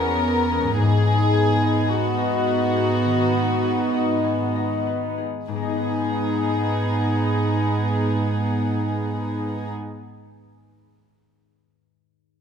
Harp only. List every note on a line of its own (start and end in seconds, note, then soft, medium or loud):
0.00 0.83 E2 soft
0.00 0.84 C#4 soft
0.00 0.51 G#4 soft
0.00 0.83 C#5 soft
0.00 1.88 G#5 soft
0.52 1.32 G#4 soft
0.80 4.70 G#2 soft
1.07 3.33 D#4 soft
1.33 2.75 G#4 soft
1.62 2.16 D#5 soft
1.89 4.23 G#5 soft
2.17 3.93 D#5 soft
2.47 4.86 B4 soft
2.76 3.63 G#4 soft
3.05 5.54 D#3 soft
3.34 5.61 D#4 soft
3.64 5.16 G#4 soft
3.94 4.54 D#5 soft
4.24 5.82 G#5 soft
4.55 8.45 D#5 soft
4.87 5.75 B4 soft
5.18 5.68 G#4 soft
5.48 9.71 G#2 soft
5.55 9.78 G#3 soft
5.62 9.85 D#4 soft
5.69 9.92 G#4 soft
5.76 9.99 B4 soft
5.83 10.06 G#5 soft